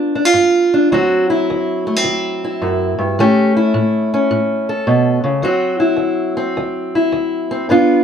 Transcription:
Already playing: G2 B3 D4 F4
0.15 D4
0.25 F4
0.34 G2
0.74 D4
0.92 D2 F#3 C4 F#4
1.30 E4
1.50 D2
1.87 A3
1.96 C4
2.04 D2
2.44 E4
2.62 F#2
2.99 G2
3.19 A2 A3 C#4 G4
3.57 E4
3.74 A2
4.14 C#4
4.31 A2
4.69 A4
4.87 B2
5.24 C#3
5.42 D2 F#3 C4 F#4
5.80 E4
5.97 D2
6.37 C4
6.57 D2
6.95 E4
7.12 D2
7.51 C4
7.69 G2 B3 D4 F4

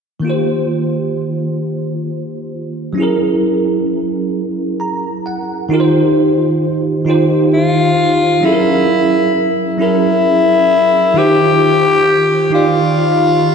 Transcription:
0.20 D#3 A#3
0.25 F4 G4
0.30 C5
2.93 F#3 C#4
2.98 E4 G#4
3.02 A#4
4.80 A#5
5.26 F#5
5.69 D#3 D#4 F4 G4
5.74 A#4
5.80 C5
7.05 D#3 D#4 F4 G4
7.10 C5
7.53 F4
8.41 F#3 C#4 E4 G#4
8.45 E4 A4
8.52 A#4
9.77 F#3 C#4 E4 G#4
9.81 E4 A#4
11.14 D#3 D#4 F4 G4
11.18 G4 C5
12.50 D#3 D#4 F4 G4
12.54 F4 D5

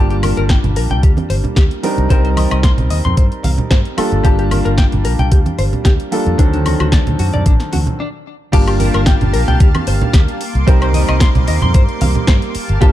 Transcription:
Already playing: G1 G3 A#3 D4 F4 A5
0.10 G4, closed hi-hat
0.23 A#4, open hi-hat, high conga, high woodblock
0.37 G1 A#4, closed hi-hat
0.49 G5, kick, snare, closed hi-hat
0.64 G1, closed hi-hat, low conga
0.76 A#1 A#4, open hi-hat
0.90 C2 G5, closed hi-hat, low conga
1.03 D2 G4, kick, closed hi-hat
1.17 closed hi-hat, high conga
1.30 G1 C5, open hi-hat
1.44 muted fingered electric bass stroke, closed hi-hat, low conga
1.56 D2 G4, kick, snare, closed hi-hat
1.71 closed hi-hat
1.83 G3 C4 D4 D#4 A#4, open hi-hat
1.98 C2, closed hi-hat
2.09 C2 G3 C4 D#4 A#4 C5, kick, closed hi-hat
2.25 C5, closed hi-hat
2.37 D#5, open hi-hat, high conga, high woodblock
2.51 C2 D#5, closed hi-hat, high woodblock
2.63 C6, kick, snare, closed hi-hat
2.78 C2, closed hi-hat, low conga
2.90 D#2 D#5, open hi-hat
3.05 F2 C6, closed hi-hat, low conga
3.17 G2 C5, kick, closed hi-hat
3.32 closed hi-hat
3.44 C2 F5, open hi-hat, high conga
3.58 closed hi-hat, low conga
3.71 G2 C5, kick, snare, closed hi-hat
3.85 closed hi-hat
3.97 G3 A#3 D4 F4 A4, muted fingered electric bass stroke, open hi-hat, high woodblock
4.12 G1, closed hi-hat
4.23 G1 G3 A#3 D4 F4 G4 A5, kick, closed hi-hat
4.39 G4, closed hi-hat
4.51 A#4, open hi-hat, high conga, high woodblock
4.65 G1 A#4, closed hi-hat
4.78 G5, kick, snare, closed hi-hat
4.92 G1, closed hi-hat, low conga
5.05 A#1 A#4, open hi-hat
5.19 C2 G5, closed hi-hat, low conga
5.32 D2 G4, kick, closed hi-hat
5.46 closed hi-hat, high conga
5.59 G1 C5, open hi-hat
5.73 closed hi-hat, low conga
5.85 D2 G4, kick, snare, closed hi-hat
6.00 closed hi-hat
6.11 G3 A#3 D4 F4 A4, open hi-hat
6.26 F2, closed hi-hat
6.38 D2 D#3 F#3 C4 D4 A4, kick, closed hi-hat
6.53 D4, closed hi-hat
6.66 F#4, open hi-hat, high conga, high woodblock
6.80 D2 F#4, closed hi-hat, high woodblock
6.92 D5, kick, snare, closed hi-hat
7.07 D2, closed hi-hat, low conga
7.19 F#2 F#4, open hi-hat
7.33 F#2 D5, closed hi-hat, low conga
7.46 A1 D4, kick, closed hi-hat
7.60 snare, closed hi-hat
7.73 D2 F#4, open hi-hat, high conga
7.87 closed hi-hat, low conga
8.00 D4
8.52 G1 G3 A#3 D4 F4 G4 F5 A5, kick, closed hi-hat, crash
8.67 G4, closed hi-hat, high woodblock
8.80 A#4, open hi-hat, high conga
8.94 G1 A#4, closed hi-hat, high woodblock
9.06 G5, kick, snare, closed hi-hat
9.21 G1, closed hi-hat, low conga
9.33 A#1 A#4, open hi-hat
9.48 C2 G5, closed hi-hat, low conga
9.60 D2 G4, kick, closed hi-hat
9.75 closed hi-hat, high conga, high woodblock
9.87 G1 C5, open hi-hat
10.01 muted fingered electric bass stroke, closed hi-hat, low conga
10.13 D2 G4, kick, snare, closed hi-hat
10.28 closed hi-hat
10.41 C6 D6, open hi-hat
10.55 C2, closed hi-hat
10.67 G3 C4 D#4 A#4 C5, kick, closed hi-hat
10.82 C5, closed hi-hat, high woodblock
10.93 D#5, open hi-hat, high conga
11.09 C2 D#5, closed hi-hat, high woodblock
11.20 C6, kick, snare, closed hi-hat
11.35 C2, closed hi-hat, low conga
11.48 D#2 D#5, open hi-hat
11.62 F2 C6, closed hi-hat, low conga
11.74 G2 C5, kick, closed hi-hat
11.89 closed hi-hat
12.01 C2 F5, open hi-hat, high conga
12.15 closed hi-hat, low conga
12.27 G2 C5, kick, snare, closed hi-hat
12.42 closed hi-hat
12.54 G4 F5 A5, muted fingered electric bass stroke, open hi-hat
12.69 G1, closed hi-hat
12.80 G3 A#3 D4 F4 G4 A5, kick, closed hi-hat

